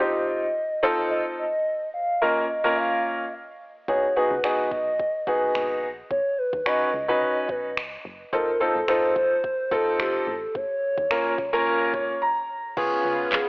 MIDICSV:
0, 0, Header, 1, 6, 480
1, 0, Start_track
1, 0, Tempo, 555556
1, 1435, Time_signature, 4, 2, 24, 8
1, 11654, End_track
2, 0, Start_track
2, 0, Title_t, "Soft synth lead"
2, 0, Program_c, 0, 80
2, 0, Note_on_c, 0, 75, 90
2, 230, Note_off_c, 0, 75, 0
2, 235, Note_on_c, 0, 75, 105
2, 715, Note_on_c, 0, 72, 89
2, 728, Note_off_c, 0, 75, 0
2, 950, Note_off_c, 0, 72, 0
2, 955, Note_on_c, 0, 75, 97
2, 1063, Note_off_c, 0, 75, 0
2, 1195, Note_on_c, 0, 75, 107
2, 1642, Note_off_c, 0, 75, 0
2, 1674, Note_on_c, 0, 77, 107
2, 1912, Note_on_c, 0, 75, 100
2, 1925, Note_off_c, 0, 77, 0
2, 2148, Note_off_c, 0, 75, 0
2, 2153, Note_on_c, 0, 75, 100
2, 2394, Note_on_c, 0, 77, 101
2, 2407, Note_off_c, 0, 75, 0
2, 2875, Note_off_c, 0, 77, 0
2, 3356, Note_on_c, 0, 73, 100
2, 3593, Note_on_c, 0, 71, 96
2, 3606, Note_off_c, 0, 73, 0
2, 3833, Note_on_c, 0, 75, 109
2, 3846, Note_off_c, 0, 71, 0
2, 4065, Note_off_c, 0, 75, 0
2, 4070, Note_on_c, 0, 75, 110
2, 4550, Note_on_c, 0, 71, 85
2, 4563, Note_off_c, 0, 75, 0
2, 4792, Note_off_c, 0, 71, 0
2, 5271, Note_on_c, 0, 73, 100
2, 5512, Note_on_c, 0, 71, 96
2, 5525, Note_off_c, 0, 73, 0
2, 5755, Note_on_c, 0, 75, 108
2, 5768, Note_off_c, 0, 71, 0
2, 5989, Note_off_c, 0, 75, 0
2, 5994, Note_on_c, 0, 75, 110
2, 6477, Note_on_c, 0, 71, 83
2, 6490, Note_off_c, 0, 75, 0
2, 6716, Note_off_c, 0, 71, 0
2, 7197, Note_on_c, 0, 70, 93
2, 7436, Note_on_c, 0, 69, 89
2, 7449, Note_off_c, 0, 70, 0
2, 7679, Note_on_c, 0, 72, 93
2, 7691, Note_off_c, 0, 69, 0
2, 7915, Note_off_c, 0, 72, 0
2, 7920, Note_on_c, 0, 72, 108
2, 8401, Note_on_c, 0, 69, 95
2, 8414, Note_off_c, 0, 72, 0
2, 8635, Note_off_c, 0, 69, 0
2, 8640, Note_on_c, 0, 67, 97
2, 8880, Note_on_c, 0, 69, 97
2, 8893, Note_off_c, 0, 67, 0
2, 9120, Note_on_c, 0, 73, 120
2, 9133, Note_off_c, 0, 69, 0
2, 10557, Note_off_c, 0, 73, 0
2, 11517, Note_on_c, 0, 68, 84
2, 11654, Note_off_c, 0, 68, 0
2, 11654, End_track
3, 0, Start_track
3, 0, Title_t, "Grand piano"
3, 0, Program_c, 1, 0
3, 0, Note_on_c, 1, 60, 72
3, 0, Note_on_c, 1, 63, 65
3, 0, Note_on_c, 1, 65, 63
3, 0, Note_on_c, 1, 67, 76
3, 380, Note_off_c, 1, 60, 0
3, 381, Note_off_c, 1, 63, 0
3, 382, Note_off_c, 1, 65, 0
3, 383, Note_off_c, 1, 67, 0
3, 715, Note_on_c, 1, 60, 84
3, 715, Note_on_c, 1, 63, 78
3, 717, Note_on_c, 1, 65, 79
3, 719, Note_on_c, 1, 69, 92
3, 1223, Note_off_c, 1, 60, 0
3, 1223, Note_off_c, 1, 63, 0
3, 1224, Note_off_c, 1, 65, 0
3, 1225, Note_off_c, 1, 69, 0
3, 1914, Note_on_c, 1, 58, 74
3, 1916, Note_on_c, 1, 61, 64
3, 1917, Note_on_c, 1, 65, 65
3, 1919, Note_on_c, 1, 70, 79
3, 2107, Note_off_c, 1, 58, 0
3, 2109, Note_off_c, 1, 61, 0
3, 2109, Note_off_c, 1, 65, 0
3, 2110, Note_off_c, 1, 70, 0
3, 2281, Note_on_c, 1, 58, 78
3, 2283, Note_on_c, 1, 61, 71
3, 2284, Note_on_c, 1, 65, 70
3, 2285, Note_on_c, 1, 70, 85
3, 2787, Note_off_c, 1, 58, 0
3, 2788, Note_off_c, 1, 61, 0
3, 2788, Note_off_c, 1, 65, 0
3, 2789, Note_off_c, 1, 70, 0
3, 3354, Note_on_c, 1, 59, 76
3, 3355, Note_on_c, 1, 63, 71
3, 3356, Note_on_c, 1, 66, 73
3, 3358, Note_on_c, 1, 68, 86
3, 3488, Note_off_c, 1, 59, 0
3, 3488, Note_off_c, 1, 63, 0
3, 3489, Note_off_c, 1, 66, 0
3, 3490, Note_off_c, 1, 68, 0
3, 3594, Note_on_c, 1, 59, 72
3, 3595, Note_on_c, 1, 63, 65
3, 3597, Note_on_c, 1, 66, 65
3, 3598, Note_on_c, 1, 68, 78
3, 3728, Note_off_c, 1, 59, 0
3, 3729, Note_off_c, 1, 63, 0
3, 3730, Note_off_c, 1, 66, 0
3, 3730, Note_off_c, 1, 68, 0
3, 3834, Note_on_c, 1, 59, 72
3, 3835, Note_on_c, 1, 63, 63
3, 3837, Note_on_c, 1, 66, 63
3, 3838, Note_on_c, 1, 68, 76
3, 4220, Note_off_c, 1, 59, 0
3, 4221, Note_off_c, 1, 63, 0
3, 4222, Note_off_c, 1, 66, 0
3, 4223, Note_off_c, 1, 68, 0
3, 4552, Note_on_c, 1, 59, 84
3, 4554, Note_on_c, 1, 63, 75
3, 4555, Note_on_c, 1, 66, 76
3, 4556, Note_on_c, 1, 68, 88
3, 5062, Note_off_c, 1, 59, 0
3, 5063, Note_off_c, 1, 63, 0
3, 5064, Note_off_c, 1, 66, 0
3, 5064, Note_off_c, 1, 68, 0
3, 5752, Note_on_c, 1, 61, 75
3, 5754, Note_on_c, 1, 63, 68
3, 5756, Note_on_c, 1, 66, 64
3, 5756, Note_on_c, 1, 71, 80
3, 5947, Note_off_c, 1, 61, 0
3, 5947, Note_off_c, 1, 63, 0
3, 5948, Note_off_c, 1, 66, 0
3, 5949, Note_off_c, 1, 71, 0
3, 6121, Note_on_c, 1, 61, 75
3, 6123, Note_on_c, 1, 63, 73
3, 6124, Note_on_c, 1, 66, 70
3, 6125, Note_on_c, 1, 71, 87
3, 6627, Note_off_c, 1, 61, 0
3, 6627, Note_off_c, 1, 63, 0
3, 6628, Note_off_c, 1, 66, 0
3, 6629, Note_off_c, 1, 71, 0
3, 7194, Note_on_c, 1, 60, 82
3, 7196, Note_on_c, 1, 63, 76
3, 7198, Note_on_c, 1, 65, 76
3, 7199, Note_on_c, 1, 69, 93
3, 7328, Note_off_c, 1, 60, 0
3, 7329, Note_off_c, 1, 63, 0
3, 7330, Note_off_c, 1, 65, 0
3, 7331, Note_off_c, 1, 69, 0
3, 7434, Note_on_c, 1, 60, 73
3, 7436, Note_on_c, 1, 63, 68
3, 7438, Note_on_c, 1, 65, 65
3, 7439, Note_on_c, 1, 69, 82
3, 7568, Note_off_c, 1, 60, 0
3, 7569, Note_off_c, 1, 63, 0
3, 7570, Note_off_c, 1, 65, 0
3, 7570, Note_off_c, 1, 69, 0
3, 7673, Note_on_c, 1, 60, 71
3, 7676, Note_on_c, 1, 63, 67
3, 7677, Note_on_c, 1, 65, 67
3, 7679, Note_on_c, 1, 69, 78
3, 8060, Note_off_c, 1, 60, 0
3, 8061, Note_off_c, 1, 63, 0
3, 8062, Note_off_c, 1, 65, 0
3, 8063, Note_off_c, 1, 69, 0
3, 8393, Note_on_c, 1, 60, 90
3, 8394, Note_on_c, 1, 63, 76
3, 8397, Note_on_c, 1, 65, 80
3, 8397, Note_on_c, 1, 69, 97
3, 8903, Note_off_c, 1, 60, 0
3, 8903, Note_off_c, 1, 63, 0
3, 8904, Note_off_c, 1, 65, 0
3, 8905, Note_off_c, 1, 69, 0
3, 9595, Note_on_c, 1, 58, 75
3, 9596, Note_on_c, 1, 61, 65
3, 9597, Note_on_c, 1, 65, 68
3, 9599, Note_on_c, 1, 70, 79
3, 9788, Note_off_c, 1, 58, 0
3, 9789, Note_off_c, 1, 61, 0
3, 9789, Note_off_c, 1, 65, 0
3, 9790, Note_off_c, 1, 70, 0
3, 9960, Note_on_c, 1, 58, 89
3, 9962, Note_on_c, 1, 61, 87
3, 9964, Note_on_c, 1, 65, 87
3, 9965, Note_on_c, 1, 70, 99
3, 10316, Note_on_c, 1, 73, 71
3, 10466, Note_off_c, 1, 58, 0
3, 10467, Note_off_c, 1, 61, 0
3, 10468, Note_off_c, 1, 65, 0
3, 10469, Note_off_c, 1, 70, 0
3, 10539, Note_off_c, 1, 73, 0
3, 10557, Note_on_c, 1, 82, 69
3, 11003, Note_off_c, 1, 82, 0
3, 11032, Note_on_c, 1, 59, 89
3, 11035, Note_on_c, 1, 61, 77
3, 11036, Note_on_c, 1, 65, 81
3, 11038, Note_on_c, 1, 68, 93
3, 11542, Note_off_c, 1, 59, 0
3, 11543, Note_off_c, 1, 61, 0
3, 11544, Note_off_c, 1, 65, 0
3, 11545, Note_off_c, 1, 68, 0
3, 11654, End_track
4, 0, Start_track
4, 0, Title_t, "Analog synth pad"
4, 0, Program_c, 2, 89
4, 11033, Note_on_c, 2, 59, 72
4, 11033, Note_on_c, 2, 65, 88
4, 11034, Note_on_c, 2, 49, 77
4, 11654, Note_off_c, 2, 49, 0
4, 11654, Note_off_c, 2, 59, 0
4, 11654, Note_off_c, 2, 65, 0
4, 11654, End_track
5, 0, Start_track
5, 0, Title_t, "FM bass"
5, 0, Program_c, 3, 39
5, 3356, Note_on_c, 3, 32, 111
5, 3447, Note_off_c, 3, 32, 0
5, 3722, Note_on_c, 3, 37, 92
5, 3804, Note_off_c, 3, 37, 0
5, 4073, Note_on_c, 3, 35, 92
5, 4339, Note_off_c, 3, 35, 0
5, 4554, Note_on_c, 3, 30, 94
5, 4727, Note_off_c, 3, 30, 0
5, 4796, Note_on_c, 3, 32, 86
5, 5035, Note_on_c, 3, 34, 94
5, 5048, Note_off_c, 3, 32, 0
5, 5208, Note_off_c, 3, 34, 0
5, 5275, Note_on_c, 3, 35, 99
5, 5367, Note_off_c, 3, 35, 0
5, 5643, Note_on_c, 3, 39, 89
5, 5724, Note_off_c, 3, 39, 0
5, 5995, Note_on_c, 3, 37, 90
5, 6260, Note_off_c, 3, 37, 0
5, 6474, Note_on_c, 3, 35, 90
5, 6716, Note_on_c, 3, 37, 89
5, 6729, Note_off_c, 3, 35, 0
5, 6889, Note_off_c, 3, 37, 0
5, 6957, Note_on_c, 3, 30, 90
5, 7130, Note_off_c, 3, 30, 0
5, 7196, Note_on_c, 3, 29, 107
5, 7287, Note_off_c, 3, 29, 0
5, 7563, Note_on_c, 3, 32, 86
5, 7644, Note_off_c, 3, 32, 0
5, 7914, Note_on_c, 3, 30, 90
5, 8180, Note_off_c, 3, 30, 0
5, 8393, Note_on_c, 3, 29, 92
5, 8567, Note_off_c, 3, 29, 0
5, 8635, Note_on_c, 3, 30, 92
5, 8808, Note_off_c, 3, 30, 0
5, 8874, Note_on_c, 3, 33, 95
5, 9048, Note_off_c, 3, 33, 0
5, 9115, Note_on_c, 3, 34, 105
5, 9207, Note_off_c, 3, 34, 0
5, 9482, Note_on_c, 3, 39, 91
5, 9564, Note_off_c, 3, 39, 0
5, 9834, Note_on_c, 3, 37, 96
5, 10100, Note_off_c, 3, 37, 0
5, 10313, Note_on_c, 3, 32, 93
5, 10487, Note_off_c, 3, 32, 0
5, 11034, Note_on_c, 3, 37, 103
5, 11208, Note_off_c, 3, 37, 0
5, 11274, Note_on_c, 3, 37, 107
5, 11448, Note_off_c, 3, 37, 0
5, 11654, End_track
6, 0, Start_track
6, 0, Title_t, "Drums"
6, 3356, Note_on_c, 9, 36, 111
6, 3442, Note_off_c, 9, 36, 0
6, 3836, Note_on_c, 9, 26, 110
6, 3922, Note_off_c, 9, 26, 0
6, 4074, Note_on_c, 9, 36, 86
6, 4160, Note_off_c, 9, 36, 0
6, 4316, Note_on_c, 9, 36, 91
6, 4402, Note_off_c, 9, 36, 0
6, 4553, Note_on_c, 9, 36, 90
6, 4640, Note_off_c, 9, 36, 0
6, 4797, Note_on_c, 9, 26, 116
6, 4883, Note_off_c, 9, 26, 0
6, 5275, Note_on_c, 9, 36, 108
6, 5362, Note_off_c, 9, 36, 0
6, 5642, Note_on_c, 9, 36, 100
6, 5729, Note_off_c, 9, 36, 0
6, 5756, Note_on_c, 9, 26, 107
6, 5843, Note_off_c, 9, 26, 0
6, 6474, Note_on_c, 9, 36, 92
6, 6560, Note_off_c, 9, 36, 0
6, 6717, Note_on_c, 9, 26, 110
6, 6803, Note_off_c, 9, 26, 0
6, 7196, Note_on_c, 9, 36, 113
6, 7282, Note_off_c, 9, 36, 0
6, 7675, Note_on_c, 9, 26, 110
6, 7762, Note_off_c, 9, 26, 0
6, 7915, Note_on_c, 9, 36, 88
6, 8001, Note_off_c, 9, 36, 0
6, 8157, Note_on_c, 9, 36, 99
6, 8243, Note_off_c, 9, 36, 0
6, 8394, Note_on_c, 9, 36, 94
6, 8480, Note_off_c, 9, 36, 0
6, 8637, Note_on_c, 9, 26, 119
6, 8724, Note_off_c, 9, 26, 0
6, 9115, Note_on_c, 9, 36, 111
6, 9202, Note_off_c, 9, 36, 0
6, 9482, Note_on_c, 9, 36, 96
6, 9569, Note_off_c, 9, 36, 0
6, 9596, Note_on_c, 9, 26, 111
6, 9682, Note_off_c, 9, 26, 0
6, 9834, Note_on_c, 9, 36, 86
6, 9921, Note_off_c, 9, 36, 0
6, 10313, Note_on_c, 9, 36, 90
6, 10400, Note_off_c, 9, 36, 0
6, 11034, Note_on_c, 9, 49, 90
6, 11035, Note_on_c, 9, 36, 112
6, 11121, Note_off_c, 9, 36, 0
6, 11121, Note_off_c, 9, 49, 0
6, 11508, Note_on_c, 9, 38, 93
6, 11514, Note_on_c, 9, 39, 112
6, 11594, Note_off_c, 9, 38, 0
6, 11601, Note_off_c, 9, 39, 0
6, 11654, End_track
0, 0, End_of_file